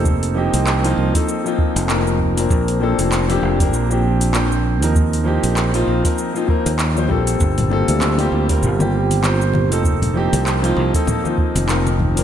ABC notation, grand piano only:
X:1
M:4/4
L:1/16
Q:"Swing 16ths" 1/4=98
K:Fmix
V:1 name="Grand piano"
[F,B,CEA]2 [F,B,CEG]3 [F,B,CEF]2 [F,B,CEA]2 [F,B,CEF]3 [F,B,CEB]3 [F,B,CDB]- | [F,B,CDB]2 [F,B,CDA]3 [F,B,CDG]2 [F,B,CDB]2 [F,B,CDG]3 [F,B,CDc]3 [F,B,CEB]- | [F,B,CEB]2 [F,B,CEG]3 [F,B,CEF]2 [F,B,CEB]2 [F,B,CEF] [F,B,CEB] z2 [F,B,CEc] [G,B,CFA]2- | [G,B,CFA]2 [G,B,CFA]3 [G,B,CFG]2 [G,B,CFB]2 [G,B,CFG]3 [G,B,CFc]3 [F,B,CEA]- |
[F,B,CEA]2 [F,B,CEG]3 [F,B,CEF]2 [F,B,CEA]2 [F,B,CEF]3 [F,B,CEB]3 [F,B,CDB] |]